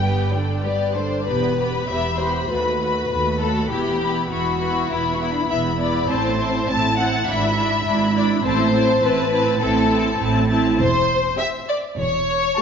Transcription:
Already playing: G1 G2 G5
0.00 G3 B3 G4 B4
0.32 D3 G3 D4 D5
0.63 G3 B3 G4 B4 D5
0.95 D3 G3 D4 C5 D5
1.26 E1 E2 B3 G4 B4 B5
1.59 B3 G4 B5
1.88 E1 E2 B3 G4 E5 B5
2.19 B3 G4 C5 B5
2.49 D#2 A3 F#4 B4 B5
2.81 A3 F#4 B5
3.10 D#2 A3 F#4 B5
3.41 A3 F#4 A4 B5
3.70 E1 E2 B3 E4 G4 B5
4.01 B3 E4 B5
4.30 E1 E2 B3 E4 F#4 B5
4.61 B3 E4 B5
4.90 E1 E2 B3 E4 B5
5.15 F#4
5.20 B3 E4 B5
5.32 D4
5.41 E4
5.50 E1 E2 B3 E4 E5 B5
5.79 B3 E4 D5 B5
6.09 A1 A2 C4 E4 C5 A5
6.39 C4 E4 A5
6.68 A1 A2 C4 E4 A5
6.98 C4 E4 F#5 A5
7.28 G#1 G#2 D4 E4 E5 B5
7.57 D4 E4 B5
7.86 G#1 G#2 D4 E4 B5
8.15 D4 E4 D5 B5
8.44 A1 A2 C4 E4 C5 A5
8.74 C4 E4 A5
9.03 A1 A2 C4 E4 B4 A5
9.33 C4 E4 A5
9.62 A1 A2 C4 E4 A4 A5
9.91 C4 E4 A5
10.20 A1 A2 C4 E4 A5
10.50 C4 E4 A5
10.79 E1 E2 C5
11.39 C4 G4 E5 G5
11.69 D5
11.98 E1 E2 C#5
12.58 A3 G4 A5

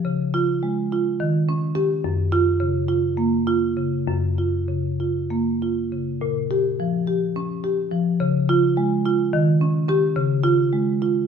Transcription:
0.05 C#3
0.34 F4
0.63 G#3
0.92 F4
1.20 D#3
1.49 C#4
1.75 C#4 G4
2.04 F#2
2.32 F4
2.60 C#3
2.89 F4
3.17 A#3
3.47 F4
3.77 C#3
4.08 F#2
4.38 F4
4.69 C#3
5.00 F4
5.30 A#3
5.62 F4
5.92 C#3
6.21 A#2
6.51 G4
6.80 F3
7.07 G4
7.36 C#4
7.64 G4
7.91 F3
8.20 C#3
8.49 F4
8.77 G#3
9.05 F4
9.33 D#3
9.61 C#4
9.89 C#4 G4
10.16 C#3
10.44 F4
10.73 G#3
11.02 F4

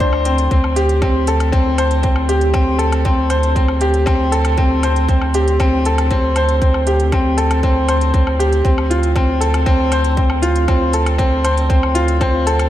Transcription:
Already playing: D2 C4 D4 F4 A4
0.00 C5, kick, closed hi-hat
0.13 low woodblock
0.25 C4, closed hi-hat
0.38 closed hi-hat
0.51 D2 C4, kick, closed hi-hat
0.64 low woodblock
0.76 G4, closed hi-hat
0.89 closed hi-hat
1.02 C4, kick, closed hi-hat, low woodblock
1.27 A4, closed hi-hat
1.40 closed hi-hat, low woodblock
1.52 C4, kick, closed hi-hat
1.78 C5, closed hi-hat, low woodblock
1.91 closed hi-hat
2.03 C4, kick, closed hi-hat
2.16 low woodblock
2.29 G4, closed hi-hat
2.41 closed hi-hat
2.54 C4, kick, closed hi-hat, low woodblock
2.79 A4, closed hi-hat
2.92 closed hi-hat, low woodblock
3.05 C4, kick, closed hi-hat
3.30 C5, closed hi-hat, low woodblock
3.43 closed hi-hat
3.56 C4, kick, closed hi-hat
3.68 low woodblock
3.81 G4, closed hi-hat
3.94 closed hi-hat
4.06 C4, kick, closed hi-hat, low woodblock
4.32 A4, closed hi-hat
4.45 closed hi-hat, low woodblock
4.57 C4, kick, closed hi-hat
4.83 C5, closed hi-hat, low woodblock
4.96 closed hi-hat
5.09 C4, kick, closed hi-hat
5.22 low woodblock
5.34 G4, closed hi-hat
5.48 closed hi-hat
5.60 C4, kick, closed hi-hat, low woodblock
5.85 A4, closed hi-hat
5.98 closed hi-hat, low woodblock
6.11 C4, kick, closed hi-hat
6.36 C5, closed hi-hat, low woodblock
6.49 closed hi-hat
6.62 C4, kick, closed hi-hat
6.74 low woodblock
6.87 G4, closed hi-hat
7.00 closed hi-hat
7.12 C4, kick, closed hi-hat, low woodblock
7.37 A4, closed hi-hat
7.51 closed hi-hat, low woodblock
7.63 C4, kick, closed hi-hat
7.89 C5, closed hi-hat, low woodblock
8.01 closed hi-hat
8.14 C4, kick, closed hi-hat
8.27 low woodblock
8.39 G4, closed hi-hat
8.53 closed hi-hat
8.65 D2 C4, kick, closed hi-hat
8.78 low woodblock
8.90 F4, closed hi-hat
9.03 closed hi-hat
9.16 C4, kick, closed hi-hat, low woodblock
9.41 A4, closed hi-hat
9.54 closed hi-hat, low woodblock
9.66 C4, kick, closed hi-hat
9.92 C5, closed hi-hat, low woodblock
10.04 closed hi-hat
10.17 C4, kick, closed hi-hat
10.30 low woodblock
10.42 F4, closed hi-hat
10.56 closed hi-hat
10.68 C4, kick, closed hi-hat, low woodblock
10.93 A4, closed hi-hat
11.06 closed hi-hat, low woodblock
11.18 C4, kick, closed hi-hat
11.44 C5, closed hi-hat, low woodblock
11.57 closed hi-hat
11.70 C4, kick, closed hi-hat
11.83 low woodblock
11.95 F4, closed hi-hat
12.08 closed hi-hat
12.21 C4, kick, closed hi-hat, low woodblock
12.47 A4, closed hi-hat
12.59 closed hi-hat, low woodblock

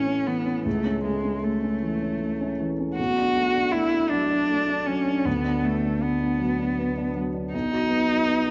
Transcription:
Already playing: A1 E3 A3 C#4
0.07 C#4
0.26 E3 B3
0.45 C#4
0.65 C#2 A3
0.85 C#4
1.04 G#3 A3
1.24 C#4
1.43 A3
1.63 C#4
1.82 E3
2.02 C#4
2.21 A3
2.41 C#4
2.60 E3
2.80 C#4
2.96 B1 F#4
3.18 D4
3.36 A3
3.55 D4
3.71 A3 E4
3.93 D4
4.09 F#3 D4
4.31 D4
4.50 A3
4.69 D4
4.86 F#3 C#4
5.07 D4
5.25 D2 B3
5.44 D4
5.63 A3 B3
5.82 D4
6.01 B3
6.20 D4
6.39 F#3
6.59 D4
6.79 B3
6.97 D4
7.15 F#3
7.34 D4
7.53 B1 D#4
7.72 F#4
7.89 B3
8.09 F#4
8.27 B3
8.45 F#4

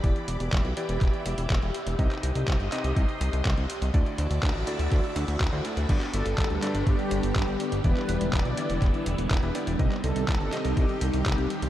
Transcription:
Already playing: B5 D6
0.04 E1 E3 B3 E4 G4 D5 E5, kick, closed hi-hat
0.16 closed hi-hat
0.28 E1, closed hi-hat
0.40 E1, closed hi-hat
0.52 E1, kick, clap, closed hi-hat
0.65 B1, closed hi-hat
0.77 E3 B3 E4 G4 D5, closed hi-hat
0.89 E1, closed hi-hat
1.01 E1, kick, clap, closed hi-hat
1.13 closed hi-hat
1.26 E1, closed hi-hat
1.38 E1, closed hi-hat
1.50 E1, kick, clap, closed hi-hat
1.62 E1, closed hi-hat
1.75 closed hi-hat
1.87 E1, closed hi-hat
1.99 C2 C3 C4 D#4 G4 D#5 C6 D#6, kick, closed hi-hat
2.11 clap, closed hi-hat
2.23 C2, closed hi-hat
2.35 C2, closed hi-hat
2.48 C2, kick, clap, closed hi-hat
2.60 G1, closed hi-hat
2.72 C3 C4 D#4 G4 D#5, clap, closed hi-hat
2.84 C2, closed hi-hat
2.96 C2, kick, closed hi-hat
3.09 closed hi-hat
3.21 C2, closed hi-hat
3.33 C2, closed hi-hat
3.45 C2, kick, clap, closed hi-hat
3.57 C2, closed hi-hat
3.70 closed hi-hat
3.82 C2, closed hi-hat
3.94 D2 D3 A3 E4 F#4 D5 E5 A5 D6, kick, closed hi-hat
4.06 closed hi-hat
4.18 D2, closed hi-hat
4.30 D2, closed hi-hat
4.43 D2, kick, clap, closed hi-hat
4.55 A1, closed hi-hat
4.67 D3 A3 E4 F#4 D5, closed hi-hat
4.79 D2, closed hi-hat
4.92 D2, kick, clap, closed hi-hat
5.04 closed hi-hat
5.16 D2, closed hi-hat
5.28 D2, closed hi-hat
5.40 D2, kick, clap, closed hi-hat
5.52 D2 D3 A3 E4 F#4 C5, closed hi-hat
5.65 A3 E4 F#4 D5, closed hi-hat
5.77 D2, closed hi-hat
5.89 G1 G2 D3 G3 B3 D4 G4 D5, kick, closed hi-hat, crash
6.01 clap, closed hi-hat
6.14 G1 A4, closed hi-hat
6.26 G1, closed hi-hat
6.38 G1, kick, clap, closed hi-hat
6.50 D2, closed hi-hat
6.62 G2 B3 D4 G4 D5, clap, closed hi-hat
6.74 G1, closed hi-hat
6.87 G1 G4, kick, closed hi-hat
6.99 closed hi-hat
7.11 G1, closed hi-hat
7.23 G1, closed hi-hat
7.35 G1 G4, kick, clap, closed hi-hat
7.48 G1, closed hi-hat
7.60 closed hi-hat
7.72 G1, closed hi-hat
7.84 E1 E3 B3 E4 G4 B4 D5, kick, closed hi-hat
7.97 clap, closed hi-hat
8.09 E1, closed hi-hat
8.21 E1, closed hi-hat
8.33 E1 D5, kick, clap, closed hi-hat
8.45 B1, closed hi-hat
8.57 E3 B3 E4 G4 D5, closed hi-hat
8.70 E1, closed hi-hat
8.82 E1, kick, clap, closed hi-hat
8.94 closed hi-hat
9.06 E1, closed hi-hat
9.18 E1, closed hi-hat
9.31 E1, kick, clap, closed hi-hat
9.43 E1 E3 B3 E4 G4 B4, closed hi-hat
9.55 B3 E4 G4 D5, closed hi-hat
9.67 E1, closed hi-hat
9.79 C2 C3 D#3 C4 D#4 G4 D#5, kick, closed hi-hat
9.92 clap, closed hi-hat
10.04 C2 A4, closed hi-hat
10.16 C2, closed hi-hat
10.28 C2, kick, clap, closed hi-hat
10.40 G1, closed hi-hat
10.53 C3 C4 D#4 G4 D#5, clap, closed hi-hat
10.65 C2, closed hi-hat
10.77 C2 G4, kick, closed hi-hat
10.89 closed hi-hat
11.01 C2, closed hi-hat
11.14 C2, closed hi-hat
11.26 C2 G4, kick, clap, closed hi-hat
11.38 C2, closed hi-hat
11.50 closed hi-hat
11.62 C2, closed hi-hat

